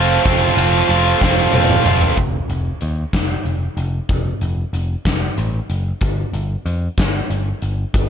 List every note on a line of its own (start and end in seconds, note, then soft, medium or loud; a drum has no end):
0.00 0.17 F1 medium
0.00 0.23 F3 medium
0.00 0.23 A3 medium
0.00 0.24 C4 medium
0.00 0.25 F4 medium
0.23 0.49 F1 loud
0.23 0.86 F3 medium
0.23 0.58 A3 medium
0.23 0.56 C4 loud
0.23 0.54 F4 loud
0.23 kick loud
0.23 ride medium
0.55 0.81 F1 medium
0.55 0.87 A3 medium
0.55 0.89 C4 medium
0.55 0.90 F4 medium
0.55 ride medium
0.88 1.13 F1 medium
0.88 1.51 F3 medium
0.88 1.24 A3 medium
0.88 1.22 C4 medium
0.88 1.20 F4 medium
0.88 ride medium
1.21 1.45 F1 medium
1.21 1.52 F3 medium
1.21 1.52 A3 medium
1.21 1.53 C4 medium
1.21 1.54 F4 medium
1.21 kick medium
1.21 snare medium
1.52 1.77 F1 medium
1.52 2.15 F3 medium
1.52 1.86 A3 medium
1.52 1.85 C4 medium
1.52 1.83 F4 medium
1.52 high tom medium
1.70 mid tom medium
1.84 2.09 F1 medium
1.84 2.16 A3 medium
1.84 2.16 C4 medium
1.84 2.15 F4 medium
1.84 mid tom loud
2.02 floor tom loud
2.17 2.39 F1 medium
2.17 kick medium
2.17 closed hi-hat medium
2.49 2.71 F1 medium
2.49 closed hi-hat medium
2.81 3.03 D#2 medium
2.81 closed hi-hat medium
3.13 3.35 F1 medium
3.13 kick medium
3.13 snare loud
3.13 closed hi-hat medium
3.45 3.67 F1 medium
3.45 closed hi-hat medium
3.77 3.98 F1 medium
3.77 closed hi-hat medium
4.09 4.31 F1 medium
4.09 kick loud
4.09 closed hi-hat medium
4.41 4.63 F1 medium
4.41 closed hi-hat medium
4.73 4.95 F1 medium
4.73 closed hi-hat medium
5.05 5.27 F1 medium
5.05 kick medium
5.05 snare loud
5.05 closed hi-hat medium
5.38 5.59 A1 medium
5.38 closed hi-hat medium
5.70 5.91 F#1 medium
5.70 closed hi-hat medium
6.01 6.23 G1 medium
6.01 kick loud
6.01 closed hi-hat medium
6.33 6.55 G1 medium
6.33 closed hi-hat medium
6.66 6.87 F2 medium
6.66 closed hi-hat medium
6.98 7.20 G1 medium
6.98 kick medium
6.98 snare loud
6.98 closed hi-hat medium
7.30 7.51 G1 medium
7.30 closed hi-hat medium
7.62 7.84 G1 medium
7.62 closed hi-hat medium
7.94 8.09 G1 medium
7.94 kick loud
7.94 closed hi-hat medium